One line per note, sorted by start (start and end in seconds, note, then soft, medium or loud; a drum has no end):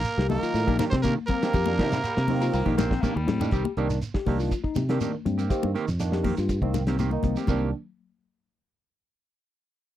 0.00 0.28 A#3 medium
0.00 0.27 A#4 loud
0.04 ride bell medium
0.04 shekere loud
0.17 0.39 C2 medium
0.17 0.36 G4 medium
0.17 muted clean electric guitar stroke soft
0.17 snare medium
0.29 0.69 D#3 medium
0.29 0.76 A#3 medium
0.29 0.69 A#3 medium
0.29 0.70 D#4 medium
0.29 0.76 A#4 loud
0.29 muted clean electric guitar stroke soft
0.29 open hi-hat medium
0.29 high conga medium
0.29 low conga medium
0.29 shekere soft
0.42 0.61 F4 medium
0.42 muted fingered electric bass stroke soft
0.42 muted clean electric guitar stroke soft
0.42 ride bell medium
0.42 shekere medium
0.54 0.66 A2 loud
0.54 muted clean electric guitar stroke soft
0.54 snare soft
0.54 ride bell medium
0.54 shekere medium
0.67 0.78 A#1 loud
0.67 0.78 A#3 medium
0.67 0.78 D4 medium
0.67 0.86 D#4 medium
0.67 0.78 G4 medium
0.67 kick medium
0.67 high conga medium
0.79 0.94 D#3 medium
0.79 0.94 A#3 medium
0.79 0.85 A#3 medium
0.79 0.95 D4 medium
0.79 0.95 G4 medium
0.79 0.85 A#4 medium
0.79 snare medium
0.79 ride bell medium
0.79 high conga loud
0.79 low conga medium
0.79 shekere medium
0.90 1.14 C3 medium
0.90 1.11 C4 medium
0.90 0.96 C5 loud
0.90 kick medium
0.90 snare medium
0.90 shekere soft
0.94 0.99 C4 medium
1.02 1.17 D#3 medium
1.02 1.15 A#3 medium
1.02 1.17 A#3 medium
1.02 1.17 D4 medium
1.02 1.17 G4 medium
1.02 1.14 A#4 loud
1.02 kick medium
1.02 ride bell medium
1.02 high conga medium
1.02 shekere loud
1.18 muted clean electric guitar stroke soft
1.26 3.24 A#3 loud
1.26 1.48 C4 medium
1.26 3.22 A#4 loud
1.26 muted clean electric guitar stroke soft
1.26 kick medium
1.26 ride bell medium
1.26 low conga medium
1.26 shekere soft
1.42 1.52 D#3 medium
1.42 1.52 A#3 medium
1.42 1.57 A#3 soft
1.42 1.52 C4 medium
1.42 1.57 D4 medium
1.42 1.56 G4 medium
1.42 snare medium
1.42 ride bell medium
1.42 shekere medium
1.54 1.80 F2 loud
1.54 1.72 G4 medium
1.54 kick loud
1.54 ride bell medium
1.54 low conga medium
1.54 shekere medium
1.66 1.92 D#3 medium
1.66 1.92 A#3 medium
1.66 1.92 D4 medium
1.66 muted clean electric guitar stroke soft
1.66 high conga loud
1.79 2.00 C3 medium
1.79 1.91 D#3 medium
1.79 1.85 F3 medium
1.79 1.91 A#3 medium
1.79 1.91 D4 medium
1.79 1.97 D#4 medium
1.79 1.90 G4 medium
1.79 kick medium
1.79 snare medium
1.79 ride bell medium
1.79 shekere soft
1.91 1.97 G3 medium
1.91 muted clean electric guitar stroke medium
1.91 snare medium
1.91 ride bell medium
1.91 shekere loud
2.02 2.07 F#3 medium
2.02 2.16 G3 medium
2.02 ride bell medium
2.02 shekere medium
2.17 2.49 C3 medium
2.17 2.28 A#3 medium
2.17 muted clean electric guitar stroke soft
2.17 snare medium
2.28 2.68 D#3 loud
2.28 2.68 A#3 medium
2.28 2.69 C4 loud
2.28 muted clean electric guitar stroke soft
2.28 open hi-hat medium
2.28 high conga medium
2.28 low conga medium
2.28 shekere soft
2.41 2.46 A#3 medium
2.41 2.60 F4 medium
2.41 muted clean electric guitar stroke medium
2.41 ride bell medium
2.41 shekere medium
2.53 2.65 C2 loud
2.53 2.65 A#3 loud
2.53 muted clean electric guitar stroke soft
2.53 ride bell medium
2.53 shekere medium
2.66 2.98 A#1 medium
2.66 2.76 D#3 medium
2.66 2.76 A#3 medium
2.66 2.77 D4 medium
2.66 2.85 D#4 medium
2.66 2.77 G4 medium
2.66 kick medium
2.66 high conga medium
2.77 2.93 D#3 medium
2.77 2.93 A#3 medium
2.77 3.03 C4 loud
2.77 2.93 D4 medium
2.77 2.93 G4 medium
2.77 snare medium
2.77 ride bell medium
2.77 high conga loud
2.77 shekere loud
2.91 3.09 C4 medium
2.91 kick medium
2.91 snare medium
2.91 shekere soft
3.02 3.16 D#3 medium
3.02 3.17 A#3 loud
3.02 3.16 A#3 medium
3.02 3.15 D4 medium
3.02 3.15 G4 medium
3.02 kick medium
3.02 high tom medium
3.02 high conga medium
3.02 shekere loud
3.16 3.26 D#2 medium
3.16 3.65 G3 medium
3.16 muted clean electric guitar stroke medium
3.16 high conga medium
3.28 3.49 A2 medium
3.28 3.46 C4 medium
3.28 muted clean electric guitar stroke soft
3.28 snare medium
3.28 low conga loud
3.28 shekere soft
3.40 3.50 D#3 loud
3.40 3.50 A#3 medium
3.40 3.52 A#3 medium
3.40 3.50 D4 loud
3.40 3.53 D4 medium
3.40 3.52 G4 medium
3.40 floor tom medium
3.40 low conga loud
3.40 shekere medium
3.51 3.63 C2 medium
3.51 3.65 D#3 medium
3.51 3.65 C4 medium
3.51 3.71 G4 medium
3.51 3.65 G4 medium
3.51 muted clean electric guitar stroke medium
3.51 kick medium
3.51 closed hi-hat medium
3.51 shekere medium
3.65 muted clean electric guitar stroke soft
3.65 high conga medium
3.77 3.99 C2 medium
3.77 3.97 D#3 medium
3.77 3.90 D#3 medium
3.77 3.90 A#3 medium
3.77 3.97 A#3 medium
3.77 3.89 C4 medium
3.77 3.97 D4 loud
3.77 3.96 D#4 medium
3.77 3.89 G4 loud
3.77 closed hi-hat soft
3.77 shekere soft
3.90 muted clean electric guitar stroke soft
3.90 snare soft
3.90 closed hi-hat soft
3.90 shekere medium
4.02 closed hi-hat medium
4.02 shekere medium
4.14 4.33 G4 medium
4.14 muted fingered electric bass stroke soft
4.14 muted clean electric guitar stroke soft
4.14 kick medium
4.14 snare medium
4.26 4.48 C2 medium
4.26 4.51 D#3 medium
4.26 4.40 D#3 medium
4.26 4.51 A#3 medium
4.26 4.40 A#3 medium
4.26 4.39 C4 medium
4.26 4.51 D4 loud
4.26 4.39 G4 medium
4.26 kick medium
4.26 open hi-hat medium
4.26 high conga medium
4.26 low conga medium
4.26 shekere soft
4.39 4.58 F4 medium
4.39 muted clean electric guitar stroke soft
4.39 snare soft
4.39 shekere medium
4.51 muted clean electric guitar stroke soft
4.51 kick medium
4.51 closed hi-hat medium
4.51 shekere medium
4.64 4.82 D#4 medium
4.64 kick medium
4.75 4.98 C3 medium
4.75 muted clean electric guitar stroke soft
4.75 snare soft
4.75 closed hi-hat soft
4.75 high conga medium
4.75 low conga medium
4.75 shekere medium
4.89 5.14 D#3 medium
4.89 5.00 D#3 medium
4.89 5.14 A#3 medium
4.89 5.00 A#3 medium
4.89 5.07 C4 medium
4.89 5.00 C4 medium
4.89 5.14 D4 medium
4.89 5.01 G4 medium
4.89 snare medium
4.89 closed hi-hat soft
4.89 shekere soft
5.01 5.14 D#3 medium
5.01 5.13 A#3 medium
5.01 5.13 C4 medium
5.01 5.13 G4 medium
5.01 closed hi-hat medium
5.01 high conga medium
5.01 shekere medium
5.14 muted clean electric guitar stroke medium
5.25 5.47 G2 medium
5.25 5.44 C4 medium
5.25 muted clean electric guitar stroke soft
5.25 closed hi-hat medium
5.25 high conga medium
5.25 low conga medium
5.25 shekere soft
5.38 5.53 A#3 medium
5.38 5.53 C4 medium
5.38 5.53 G4 medium
5.38 closed hi-hat medium
5.38 shekere medium
5.50 5.70 D#3 loud
5.50 5.70 A#3 loud
5.50 5.70 C4 loud
5.50 5.69 G4 medium
5.50 kick medium
5.50 closed hi-hat medium
5.50 shekere medium
5.63 5.74 G2 medium
5.63 muted clean electric guitar stroke soft
5.63 high conga medium
5.75 5.88 D#3 medium
5.75 5.87 A#3 medium
5.75 5.87 C4 medium
5.75 5.87 G4 loud
5.75 snare soft
5.75 closed hi-hat medium
5.75 shekere soft
5.88 6.32 F2 medium
5.88 muted clean electric guitar stroke soft
5.88 snare soft
5.88 closed hi-hat medium
5.88 shekere medium
6.00 6.25 D#3 loud
6.00 6.24 A#3 medium
6.00 6.25 D4 loud
6.00 snare soft
6.00 closed hi-hat medium
6.00 shekere medium
6.12 6.31 G4 medium
6.12 muted clean electric guitar stroke soft
6.12 snare medium
6.23 6.37 D#3 medium
6.23 6.37 A#3 medium
6.23 6.36 C4 medium
6.23 6.36 G4 medium
6.23 kick medium
6.23 open hi-hat medium
6.23 high conga medium
6.23 low conga medium
6.23 shekere soft
6.37 6.60 G2 medium
6.37 6.57 F4 medium
6.37 muted clean electric guitar stroke soft
6.37 snare soft
6.37 closed hi-hat medium
6.37 shekere medium
6.49 muted clean electric guitar stroke soft
6.49 kick medium
6.49 closed hi-hat medium
6.49 shekere medium
6.61 7.16 C2 medium
6.61 6.82 D#3 medium
6.61 6.82 A#3 medium
6.61 6.82 C4 loud
6.61 6.81 D#4 medium
6.61 kick medium
6.61 high conga medium
6.74 muted clean electric guitar stroke soft
6.74 snare soft
6.74 closed hi-hat medium
6.74 high conga medium
6.74 low conga medium
6.74 shekere medium
6.87 6.98 D#3 medium
6.87 6.98 A#3 medium
6.87 7.05 C4 medium
6.87 6.99 C4 medium
6.87 6.99 G4 medium
6.87 snare medium
6.87 closed hi-hat medium
6.87 shekere soft
6.99 7.12 D#3 medium
6.99 7.12 A#3 medium
6.99 7.12 C4 medium
6.99 7.11 G4 medium
6.99 closed hi-hat medium
6.99 high conga medium
6.99 shekere medium
7.11 7.36 D#3 medium
7.11 7.37 A#3 medium
7.11 7.37 D#4 loud
7.11 muted clean electric guitar stroke soft
7.11 high conga medium
7.23 7.35 C2 medium
7.23 7.42 C4 medium
7.23 muted clean electric guitar stroke soft
7.23 kick medium
7.23 closed hi-hat soft
7.23 high conga medium
7.23 low conga medium
7.23 shekere soft
7.36 7.48 A#3 soft
7.36 7.49 C4 medium
7.36 7.49 G4 medium
7.36 snare soft
7.36 closed hi-hat medium
7.36 shekere medium
7.47 7.71 C2 loud
7.47 7.69 D#3 medium
7.47 7.72 D#3 medium
7.47 7.69 A#3 medium
7.47 7.72 A#3 medium
7.47 7.64 C4 medium
7.47 7.70 C4 medium
7.47 7.72 D4 medium
7.47 7.70 G4 medium
7.47 kick medium
7.47 crash medium
7.47 low conga medium
7.47 shekere loud